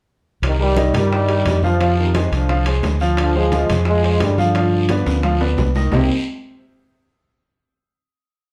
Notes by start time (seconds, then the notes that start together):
0.42 C2 C3 D#3, high bongo, high conga, high timbale, long guiro
0.59 D#3 G3 G4 A#4, high bongo, high conga
0.76 D#3 D#4 D#5, high bongo, high conga, high timbale, low timbale, short guiro
0.94 G2 D#3 G3 G4 A#4, high bongo, high conga, low conga, high timbale, short guiro
1.11 high bongo, high conga, long guiro
1.28 G3 G4 A#4, high bongo, high conga, high timbale
1.45 F2, high bongo, low bongo, high conga, high timbale, low timbale, short guiro
1.63 C3 F3 F4 F5, high conga, short guiro
1.80 F3 F4 F5, high bongo, high conga, high timbale, long guiro
1.98 C3 D#3, high bongo, high conga
2.15 G#3 G#4 C5, high bongo, high conga, high timbale, low timbale, short guiro
2.32 C2 D3 F3, high bongo, high conga, high timbale, short guiro
2.49 F3 F4 F5, high bongo, high conga, long guiro
2.66 G#3 G#4 C5, high bongo, high conga, high timbale
2.83 D2, high bongo, low bongo, high conga, high timbale, low timbale, short guiro
3.00 F3 F4 F5, short guiro
3.17 D3 F3, high bongo, high conga, high timbale, long guiro
3.34 F3 G#3 G#4 C5, high bongo, high conga
3.52 F3 F4 F5, high bongo, high conga, high timbale, low timbale, short guiro
3.69 F2 G#3 G#4 C5, high bongo, high conga, low conga, high timbale, short guiro
3.85 F3 G#3, high bongo, high conga, long guiro
4.03 G#3 G#4 C5, high bongo, high conga, high timbale
4.20 G2 D3 G3, high bongo, low bongo, high conga, high timbale, low timbale, short guiro
4.38 D3 F3 F4 F5, high conga, short guiro
4.55 F3 F4 F5, high bongo, high conga, high timbale, long guiro
4.72 high bongo, high conga
4.89 B3 B4 D5, high bongo, high conga, high timbale, low timbale, short guiro
5.06 D2, high bongo, high conga, high timbale, short guiro
5.23 F3 F4 F5, high bongo, high conga, low timbale, long guiro
5.40 B3 B4 D5, high bongo, high conga, high timbale
5.57 C2, high bongo, low bongo, high conga, low timbale, short guiro
5.75 D#3 D#4 D#5, high conga, low timbale, short guiro
5.92 C2 C3 G3 A#3 C4 D#4 G4, low bongo, low conga, low timbale, long guiro